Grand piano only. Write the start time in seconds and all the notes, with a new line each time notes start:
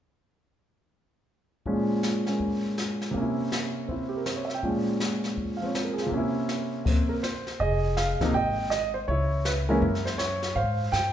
1.66 A#2 F3 G#3 C#4
2.26 G#3 A#3 C#4
3.11 C3 A#3
3.18 C#4
3.22 E4
3.88 C4 E4
4.09 G4
4.17 A#4
4.26 C5
4.36 C#5
4.45 E5
4.54 G5
4.63 A#2 F3 G#3 C#4
5.57 F3 F5
5.63 C4 C#5
5.75 C5
5.84 A#4
5.94 G#4
6.02 F4
6.06 C3 A#3
6.14 C#4 E4
6.85 A#3 C4
7.09 A#4
7.23 C5
7.60 G#4 D#5
7.97 F5
8.21 C3 F3 A#3 D#4
8.34 D#5 G5
8.70 D#5
8.94 C5
9.08 E4 C#5
9.45 B4
9.69 E3 G#3 A#3 C#4 E4 A#4
10.05 C5
10.18 C#5
10.56 C5 F5
10.92 G5